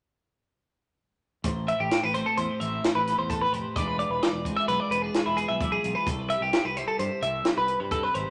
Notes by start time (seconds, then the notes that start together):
1.44 A1 A2 C5, kick, closed hi-hat
1.68 E4 E5, closed hi-hat
1.80 A1 G4
1.91 snare, closed hi-hat
2.03 A1 B4
2.14 A3 C4 C5, closed hi-hat
2.26 A4
2.37 E2 E4 C5, closed hi-hat
2.51 G4
2.60 A1 E3 C4 E5, closed hi-hat
2.84 E4, snare, closed hi-hat
2.95 A1 G4 B4
3.07 A4, snare, closed hi-hat
3.18 E2 C5
3.30 A2 A4, kick, closed hi-hat
3.42 B4
3.52 F1 G4 C5, closed hi-hat
3.76 E1 E3 G#3 D4 F4 B4 D5, kick, closed hi-hat
3.88 B4
3.99 F4 D5, closed hi-hat
4.10 E1 B4
4.23 D5, snare, closed hi-hat
4.33 E1
4.45 G#3 C4, kick, closed hi-hat
4.57 D4 E5
4.68 B1 F4 B4, closed hi-hat
4.80 D5
4.90 E1 B2 C4 B4, closed hi-hat
5.02 D4 G#4
5.14 F4, snare, closed hi-hat
5.26 E1 E4
5.37 G#4 B4, closed hi-hat
5.49 B1 E5
5.61 E3 D5, kick, closed hi-hat
5.72 G#4
5.84 B1 F4, closed hi-hat
5.95 B4
6.07 C2 C3 A4, kick, closed hi-hat
6.19 B4
6.30 G4 E5, closed hi-hat
6.41 C2 G4
6.53 snare, closed hi-hat
6.65 C2 B4
6.77 G3 E4 C5, closed hi-hat
6.88 A4
6.99 G2 G4 C5, closed hi-hat
7.22 C2 C3 E4 E5, closed hi-hat
7.45 G4, snare, closed hi-hat
7.57 C2 B4
7.68 B4, closed hi-hat
7.80 G2 C5
7.91 C3 A4 B4, kick, closed hi-hat
8.03 B4
8.14 G#1 G4 C5, closed hi-hat